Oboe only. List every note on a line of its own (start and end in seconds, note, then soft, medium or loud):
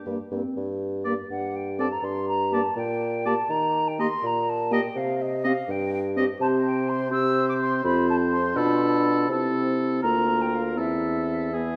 1.05 1.14 D5 soft
1.79 1.88 D5 soft
2.53 2.62 D5 soft
3.25 3.34 D5 soft
4.00 4.08 D#5 soft
4.73 4.81 D#5 soft
5.44 5.53 D#5 medium
6.17 6.25 D#5 medium
6.42 7.09 C5 medium
7.11 7.82 C5 medium
7.85 8.58 C5 medium
8.56 9.29 A4 medium
9.30 9.99 A4 soft
10.03 10.79 A#4 soft
10.78 11.55 A4 soft
11.54 11.76 G#4 soft